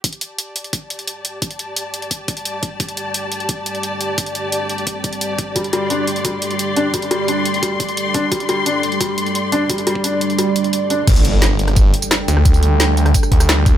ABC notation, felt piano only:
X:1
M:4/4
L:1/16
Q:1/4=174
K:Cdor
V:1 name="Felt piano" clef=bass
z16 | z16 | z16 | z16 |
G,2 G,2 D2 z2 G, z4 z D z | G,2 G,2 D2 z2 G, z4 z D z | G,2 G,2 D2 z2 G, z4 z D z | G,2 G,2 D2 z2 G, z4 z D z |
z16 | z16 |]